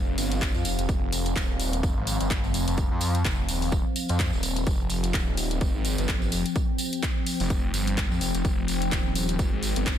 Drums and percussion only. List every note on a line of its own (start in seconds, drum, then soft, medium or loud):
0.18 open hi-hat loud
0.18 tambourine loud
0.32 closed hi-hat medium
0.32 tambourine soft
0.42 kick loud
0.42 clap loud
0.42 closed hi-hat medium
0.42 tambourine medium
0.54 tambourine soft
0.65 open hi-hat loud
0.65 tambourine medium
0.78 closed hi-hat medium
0.78 tambourine soft
0.89 kick loud
0.89 closed hi-hat medium
0.89 tambourine medium
1.13 open hi-hat loud
1.13 tambourine loud
1.26 closed hi-hat medium
1.26 tambourine soft
1.36 kick loud
1.36 clap loud
1.36 closed hi-hat medium
1.36 tambourine medium
1.60 open hi-hat loud
1.60 tambourine medium
1.73 closed hi-hat medium
1.73 tambourine soft
1.83 kick loud
1.83 closed hi-hat medium
1.83 tambourine medium
2.07 open hi-hat loud
2.07 tambourine loud
2.20 closed hi-hat medium
2.20 tambourine soft
2.30 kick loud
2.30 clap loud
2.30 closed hi-hat medium
2.30 tambourine medium
2.44 tambourine soft
2.54 open hi-hat loud
2.54 tambourine medium
2.68 closed hi-hat medium
2.68 tambourine soft
2.77 kick loud
2.77 closed hi-hat medium
2.77 tambourine medium
3.01 open hi-hat loud
3.01 tambourine loud
3.15 closed hi-hat medium
3.15 tambourine soft
3.25 kick loud
3.25 clap loud
3.25 closed hi-hat medium
3.25 tambourine medium
3.49 open hi-hat loud
3.49 tambourine loud
3.62 open hi-hat medium
3.62 tambourine soft
3.72 kick loud
3.72 closed hi-hat soft
3.72 tambourine medium
3.96 open hi-hat loud
3.96 tambourine medium
4.09 closed hi-hat medium
4.09 tambourine soft
4.19 kick loud
4.19 clap loud
4.19 closed hi-hat soft
4.19 tambourine medium
4.33 tambourine soft
4.43 open hi-hat loud
4.43 tambourine medium
4.56 closed hi-hat medium
4.56 tambourine soft
4.67 kick loud
4.67 closed hi-hat medium
4.67 tambourine medium
4.90 open hi-hat loud
4.90 tambourine medium
5.03 closed hi-hat medium
5.03 tambourine soft
5.14 kick loud
5.14 clap loud
5.14 closed hi-hat medium
5.14 tambourine medium
5.37 open hi-hat loud
5.37 tambourine medium
5.51 closed hi-hat medium
5.51 tambourine soft
5.61 kick loud
5.61 closed hi-hat medium
5.61 tambourine soft
5.85 open hi-hat loud
5.85 tambourine loud
5.98 closed hi-hat medium
5.98 tambourine soft
6.08 kick loud
6.08 clap loud
6.08 closed hi-hat medium
6.08 tambourine medium
6.22 tambourine soft
6.32 open hi-hat loud
6.32 tambourine medium
6.46 closed hi-hat medium
6.46 tambourine soft
6.56 kick loud
6.56 closed hi-hat medium
6.56 tambourine medium
6.78 open hi-hat loud
6.78 tambourine medium
6.93 closed hi-hat medium
6.93 tambourine soft
7.03 kick loud
7.03 clap loud
7.03 closed hi-hat medium
7.03 tambourine medium
7.26 open hi-hat loud
7.26 tambourine medium
7.40 open hi-hat medium
7.40 tambourine soft
7.50 kick loud
7.50 closed hi-hat medium
7.50 tambourine soft
7.74 open hi-hat loud
7.74 tambourine loud
7.87 closed hi-hat medium
7.87 tambourine soft
7.97 kick loud
7.97 clap loud
7.97 closed hi-hat medium
7.97 tambourine medium
8.12 tambourine soft
8.21 open hi-hat loud
8.21 tambourine medium
8.35 closed hi-hat medium
8.35 tambourine soft
8.45 kick loud
8.45 closed hi-hat medium
8.45 tambourine medium
8.68 open hi-hat loud
8.68 tambourine medium
8.82 closed hi-hat medium
8.82 tambourine soft
8.92 kick loud
8.92 clap loud
8.92 closed hi-hat medium
8.92 tambourine soft
9.15 open hi-hat loud
9.15 tambourine medium
9.29 closed hi-hat medium
9.29 tambourine soft
9.39 kick loud
9.39 closed hi-hat medium
9.39 tambourine medium
9.63 open hi-hat medium
9.63 tambourine medium
9.76 closed hi-hat medium
9.76 tambourine soft
9.86 kick loud
9.86 clap loud
9.86 closed hi-hat medium
9.86 tambourine medium